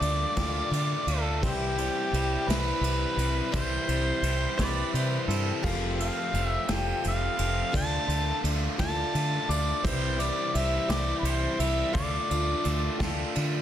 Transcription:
Already playing: grand piano F4 A4 D5 E5, harmonica D5
0.00 fingered electric bass D2, overdriven electric guitar D3 F4, steel-string acoustic guitar A3 D4 A4, ride
0.36 fingered electric bass D2, steel-string acoustic guitar D3 F3 A3 D4 A4, grand piano F4 A4 D5 G5, overdriven electric guitar F4, kick, snare, ride
0.71 fingered electric bass D3, steel-string acoustic guitar A3 D4 A4, ride
1.06 fingered electric bass D2, steel-string acoustic guitar A3 D4 A4, overdriven electric guitar F4, harmonica A4, ride
1.42 fingered electric bass C2, steel-string acoustic guitar C3 E3 G3 C4 E4 C5, harmonica C4 E4 G4, grand piano E4 G4 C5 E5, kick, ride
1.78 steel-string acoustic guitar G3 C4 E4 C5, ride
2.12 fingered electric bass C2, overdriven electric guitar E3, steel-string acoustic guitar G3 C4 E4 C5, ride
2.48 fingered electric bass C2, steel-string acoustic guitar C3 E3 G3 C4 E4, grand piano C4 E4 G4 E5, harmonica B4, snare, ride
2.81 fingered electric bass C2, steel-string acoustic guitar G3 C4 E4, ride
3.17 fingered electric bass C2, steel-string acoustic guitar G3 C4 E4, ride
3.52 fingered electric bass C2, steel-string acoustic guitar C3 E3 G3 C4 E4 C5, grand piano E4 G4 C5 E5, harmonica C5, kick, ride
3.87 fingered electric bass C2, steel-string acoustic guitar G3 C4 E4 C5, ride
4.22 fingered electric bass C2, overdriven electric guitar E3, steel-string acoustic guitar G3 C4 E4 C5, ride
4.57 fingered electric bass C2, steel-string acoustic guitar C3 E3 G3 C4 E4 C5, grand piano E4 G4 C5 E5, pedal steel guitar D5, kick, snare, ride
4.64 harmonica B4
4.93 fingered electric bass C3, steel-string acoustic guitar G3 C4 E4 C5, pedal steel guitar C5, ride
5.28 fingered electric bass G2, steel-string acoustic guitar G3 C4 E4 C5, pedal steel guitar A4, ride
5.62 fingered electric bass F1, overdriven electric guitar F2 C3 A3 F4, steel-string acoustic guitar F3 G3 C4 G4 A4, grand piano G4 A4 C5 F5, kick, crash
5.98 overdriven electric guitar F3 A3 F4, steel-string acoustic guitar C4 G4 A4, harmonica F5, ride
6.32 fingered electric bass F1, overdriven electric guitar F3 A3 F4, steel-string acoustic guitar G3 C4 G4 A4, ride
6.47 harmonica E5
6.68 fingered electric bass F1, overdriven electric guitar F2 C3 A3 F4, steel-string acoustic guitar F3 G3 C4 G4 A4, grand piano G4 A4 C5 F5, harmonica G5, snare, ride
7.04 fingered electric bass F1, steel-string acoustic guitar G3 C4 G4 A4, ride
7.08 harmonica F5
7.37 fingered electric bass F1, overdriven electric guitar F3 A3 F4, steel-string acoustic guitar C4 G4 A4, ride
7.72 fingered electric bass D2, steel-string acoustic guitar D3 F3 A3 D4 A4, grand piano F4 A4 D5 E5, overdriven electric guitar F4, kick, ride
7.77 harmonica A5
8.07 fingered electric bass D2, steel-string acoustic guitar A3 D4 A4, overdriven electric guitar F4, ride
8.42 fingered electric bass D2, overdriven electric guitar D3 F4, steel-string acoustic guitar A3 D4 A4, ride
8.78 fingered electric bass D2, steel-string acoustic guitar D3 F3 A3 D4 A4, overdriven electric guitar F4, grand piano F4 A4 D5 E5, harmonica A5, kick, snare, ride
9.13 fingered electric bass D3, steel-string acoustic guitar A3 D4 A4, ride
9.48 fingered electric bass D2, steel-string acoustic guitar A3 D4 A4, overdriven electric guitar F4, harmonica D5, ride
9.83 fingered electric bass C2, steel-string acoustic guitar C3 E3 G3 C4 E4 C5, grand piano E4 G4 C5 E5, harmonica C5, kick, ride
10.19 steel-string acoustic guitar G3 C4 E4 C5, harmonica D5, ride
10.53 fingered electric bass C2, overdriven electric guitar E3, steel-string acoustic guitar G3 C4 E4, harmonica E5, ride
10.57 steel-string acoustic guitar C5
10.88 fingered electric bass C2, steel-string acoustic guitar C3 E3 G3 C4 E4 C5, grand piano E4 G4 C5 E5, harmonica D5, snare, ride
11.19 fingered electric bass C2, harmonica B4
11.24 steel-string acoustic guitar G3 C4 E4 C5, harmonica C5, ride
11.59 fingered electric bass C2, steel-string acoustic guitar G3 C4 E4 C5, harmonica E5, ride
11.92 fingered electric bass D2, steel-string acoustic guitar D3 A3 D4 F4 A4, grand piano F4 A4 D5 F5, harmonica D5, kick, ride
12.28 fingered electric bass D2, overdriven electric guitar A3, steel-string acoustic guitar D4 F4 A4, ride
12.62 fingered electric bass D2, overdriven electric guitar D3, steel-string acoustic guitar A3 D4 F4 A4, ride
12.68 overdriven electric guitar F4
12.98 fingered electric bass D2, steel-string acoustic guitar A3 D4 F4 A4, grand piano F4 A4 D5 G5, kick, snare, ride
13.02 steel-string acoustic guitar D3
13.35 fingered electric bass D3, steel-string acoustic guitar A3 D4 F4 A4, ride

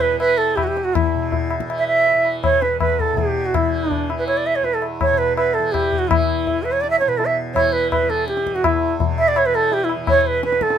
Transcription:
Already playing: tanpura E2 B2 E3
0.01 bansuri B4
0.13 tanpura E3
0.20 bansuri B4, tabla na
0.38 bansuri A4
0.56 bansuri G4, tabla na, tabla ge
0.63 tanpura E2, bansuri F#4 G4
0.77 tabla te
0.84 bansuri F#4
0.95 bansuri E4, tabla na, tabla ge
1.14 tanpura B2
1.32 tabla tin, tabla ge
1.50 tabla na
1.60 tanpura E3, tabla ke
1.70 tabla na
1.78 bansuri E5
1.87 bansuri E5
2.07 tabla tin
2.13 tanpura E3
2.25 tabla na
2.44 bansuri C#5, tabla na, tabla ge
2.62 tanpura E2, bansuri B4, tabla te
2.80 bansuri B4, tabla na, tabla ge
2.99 bansuri A4, tabla ge
3.12 tanpura B2
3.17 bansuri G4, tabla tin, tabla ge
3.46 bansuri F#4
3.54 bansuri E4, tabla na, tabla ge
3.63 tanpura E3
3.91 bansuri D4, tabla tin, tabla ge
4.10 tanpura E3, tabla na
4.18 bansuri B4
4.27 bansuri C#5, tabla na
4.37 bansuri D5
4.46 bansuri E5
4.56 bansuri C#5
4.62 tanpura E2, bansuri B4, tabla tin
4.74 bansuri A4
4.82 tabla na
5.01 bansuri C#5, tabla na, tabla ge
5.10 tanpura B2
5.18 bansuri B4
5.37 bansuri B4, tabla na
5.54 bansuri A4
5.59 tanpura E3
5.72 bansuri G4, tabla na, tabla ge
5.93 tabla ge
5.99 bansuri F#4
6.08 tanpura E3, bansuri E4, tabla na, tabla ge
6.47 tabla tin, tabla ge
6.56 tanpura E2
6.63 bansuri B4, tabla na
6.72 bansuri C#5
6.81 bansuri D5, tabla te
6.90 bansuri E5
6.99 bansuri C#5, tabla te
7.06 tanpura B2, bansuri B4
7.18 bansuri A4, tabla tin
7.26 bansuri E5
7.54 tanpura E3, bansuri C#5, tabla na, tabla ge
7.73 bansuri B4
7.91 bansuri B4, tabla na, tabla ge
8.03 tanpura E3
8.10 bansuri A4, tabla te
8.28 bansuri G4, tabla te
8.37 tabla te
8.47 tabla ke
8.51 tanpura E2, bansuri F#4
8.56 tabla te
8.64 bansuri E4, tabla na, tabla ge
8.99 tanpura B2, tabla tin, tabla ge
9.18 bansuri E5, tabla na
9.28 bansuri D5
9.36 bansuri C#5, tabla na
9.46 tanpura E3, bansuri B4
9.54 bansuri A4, tabla na
9.72 bansuri G4, tabla tin
9.84 bansuri E4
9.89 tabla na
9.96 tanpura E3
10.07 bansuri C#5, tabla na, tabla ge
10.21 bansuri C#5
10.27 bansuri B4
10.43 tanpura E2, bansuri B4, tabla te
10.52 tabla te
10.61 bansuri A4, tabla ke
10.70 tabla te

